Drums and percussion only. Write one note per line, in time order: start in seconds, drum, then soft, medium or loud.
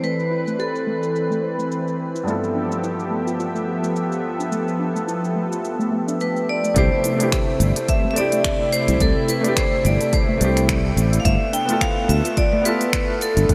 0.04 shaker soft
0.20 shaker soft
0.47 shaker medium
0.60 shaker soft
0.75 shaker soft
1.03 shaker medium
1.16 shaker soft
1.32 shaker soft
1.59 shaker medium
1.72 shaker soft
1.88 shaker soft
2.16 shaker medium
2.28 shaker medium
2.44 shaker soft
2.72 shaker medium
2.84 shaker medium
3.00 shaker soft
3.27 shaker medium
3.40 shaker soft
3.56 shaker soft
3.84 shaker medium
3.96 shaker medium
4.12 shaker soft
4.40 shaker medium
4.52 shaker medium
4.68 shaker soft
4.96 shaker medium
5.09 shaker medium
5.24 shaker soft
5.52 shaker medium
5.65 shaker soft
5.81 shaker soft
6.08 shaker medium
6.20 shaker soft
6.36 shaker soft
6.64 shaker medium
6.76 kick loud
6.76 closed hi-hat medium
6.76 shaker soft
7.04 closed hi-hat soft
7.04 shaker medium
7.20 closed hi-hat soft
7.20 shaker soft
7.32 finger snap loud
7.32 kick loud
7.32 closed hi-hat medium
7.32 shaker soft
7.60 closed hi-hat soft
7.60 shaker medium
7.76 closed hi-hat soft
7.76 shaker soft
7.88 kick loud
7.88 closed hi-hat medium
7.88 shaker soft
8.16 closed hi-hat medium
8.16 shaker medium
8.32 closed hi-hat soft
8.32 shaker soft
8.44 finger snap loud
8.44 kick loud
8.44 closed hi-hat medium
8.44 shaker soft
8.72 closed hi-hat soft
8.72 shaker medium
8.88 closed hi-hat soft
8.88 shaker soft
9.00 kick loud
9.00 closed hi-hat medium
9.00 shaker soft
9.28 closed hi-hat soft
9.28 shaker medium
9.44 closed hi-hat soft
9.44 shaker soft
9.57 finger snap loud
9.57 kick loud
9.57 closed hi-hat medium
9.57 shaker soft
9.85 closed hi-hat soft
9.85 shaker medium
10.01 closed hi-hat soft
10.01 shaker soft
10.13 kick loud
10.13 closed hi-hat soft
10.13 shaker soft
10.41 closed hi-hat medium
10.41 shaker medium
10.57 finger snap soft
10.57 closed hi-hat soft
10.57 shaker soft
10.69 finger snap loud
10.69 kick loud
10.69 closed hi-hat medium
10.69 shaker soft
10.97 closed hi-hat soft
10.97 shaker medium
11.13 closed hi-hat soft
11.13 shaker soft
11.25 kick loud
11.25 closed hi-hat medium
11.25 shaker soft
11.53 closed hi-hat soft
11.53 shaker medium
11.69 closed hi-hat soft
11.69 shaker soft
11.81 finger snap loud
11.81 kick loud
11.81 closed hi-hat medium
11.81 shaker soft
12.09 closed hi-hat soft
12.09 shaker medium
12.25 closed hi-hat soft
12.25 shaker soft
12.37 kick loud
12.37 closed hi-hat medium
12.37 shaker soft
12.65 closed hi-hat soft
12.65 shaker medium
12.81 closed hi-hat soft
12.81 shaker soft
12.93 finger snap loud
12.93 kick loud
12.93 closed hi-hat medium
12.93 shaker soft
13.21 closed hi-hat soft
13.21 shaker medium
13.37 closed hi-hat soft
13.37 shaker soft
13.49 kick loud
13.49 closed hi-hat medium
13.49 shaker soft